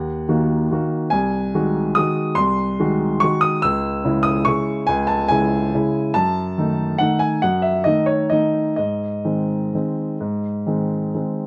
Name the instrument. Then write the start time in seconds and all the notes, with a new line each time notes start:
upright piano
Already playing: D#2 F#5
0.28 D#3 A#3 F#4
0.71 D#3 A#3 F#4
1.10 C2 G#5
1.54 D#3 G#3 F#4
1.95 D#3 G#3 F#4 D#6
2.35 C2 C6
2.79 D#3 G#3 F#4
3.20 D#3 G#3 F#4 C#6
3.41 D#6
3.62 C#2 E6
4.05 C#3 G#3 E4
4.23 D#6
4.45 C#3 G#3 E4 C#6
4.87 C#2 G#5
5.07 A5
5.28 C#3 G#3 E4 G#5
5.75 C#3 G#3 E4
6.14 F#2 A5
6.58 D#3 A3 D#4
6.98 D#3 A3 D#4 F#5
7.19 G#5
7.42 F#2 F#5
7.62 E5
7.84 D#3 A3 D#4 D#5
8.06 C#5
8.30 D#3 A3 D#4 D#5
8.76 G#2 D#5
9.25 D#3 G#3 C4
9.74 D#3 G#3 C4
10.21 G#2
10.66 D#3 G#3 C4
11.15 D#3 G#3 C4